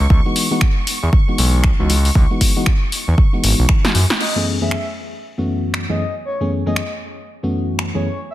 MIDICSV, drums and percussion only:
0, 0, Header, 1, 2, 480
1, 0, Start_track
1, 0, Tempo, 512821
1, 95, Time_signature, 4, 2, 24, 8
1, 7810, End_track
2, 0, Start_track
2, 0, Title_t, "Drums"
2, 96, Note_on_c, 9, 36, 107
2, 189, Note_off_c, 9, 36, 0
2, 336, Note_on_c, 9, 46, 98
2, 429, Note_off_c, 9, 46, 0
2, 571, Note_on_c, 9, 26, 116
2, 576, Note_on_c, 9, 36, 112
2, 665, Note_off_c, 9, 26, 0
2, 669, Note_off_c, 9, 36, 0
2, 815, Note_on_c, 9, 46, 94
2, 909, Note_off_c, 9, 46, 0
2, 1056, Note_on_c, 9, 36, 105
2, 1150, Note_off_c, 9, 36, 0
2, 1295, Note_on_c, 9, 46, 96
2, 1389, Note_off_c, 9, 46, 0
2, 1531, Note_on_c, 9, 26, 111
2, 1536, Note_on_c, 9, 36, 111
2, 1625, Note_off_c, 9, 26, 0
2, 1630, Note_off_c, 9, 36, 0
2, 1775, Note_on_c, 9, 46, 98
2, 1869, Note_off_c, 9, 46, 0
2, 1920, Note_on_c, 9, 46, 57
2, 2013, Note_off_c, 9, 46, 0
2, 2016, Note_on_c, 9, 36, 110
2, 2110, Note_off_c, 9, 36, 0
2, 2256, Note_on_c, 9, 36, 60
2, 2256, Note_on_c, 9, 46, 104
2, 2349, Note_off_c, 9, 46, 0
2, 2350, Note_off_c, 9, 36, 0
2, 2492, Note_on_c, 9, 26, 118
2, 2496, Note_on_c, 9, 36, 114
2, 2585, Note_off_c, 9, 26, 0
2, 2590, Note_off_c, 9, 36, 0
2, 2736, Note_on_c, 9, 46, 100
2, 2829, Note_off_c, 9, 46, 0
2, 2976, Note_on_c, 9, 36, 111
2, 3070, Note_off_c, 9, 36, 0
2, 3216, Note_on_c, 9, 46, 97
2, 3310, Note_off_c, 9, 46, 0
2, 3452, Note_on_c, 9, 26, 120
2, 3456, Note_on_c, 9, 36, 115
2, 3545, Note_off_c, 9, 26, 0
2, 3549, Note_off_c, 9, 36, 0
2, 3600, Note_on_c, 9, 38, 77
2, 3694, Note_off_c, 9, 38, 0
2, 3696, Note_on_c, 9, 46, 101
2, 3789, Note_off_c, 9, 46, 0
2, 3840, Note_on_c, 9, 38, 95
2, 3934, Note_off_c, 9, 38, 0
2, 3936, Note_on_c, 9, 49, 72
2, 4030, Note_off_c, 9, 49, 0
2, 4411, Note_on_c, 9, 26, 114
2, 4505, Note_off_c, 9, 26, 0
2, 5371, Note_on_c, 9, 26, 110
2, 5464, Note_off_c, 9, 26, 0
2, 6331, Note_on_c, 9, 26, 112
2, 6424, Note_off_c, 9, 26, 0
2, 7290, Note_on_c, 9, 26, 106
2, 7384, Note_off_c, 9, 26, 0
2, 7810, End_track
0, 0, End_of_file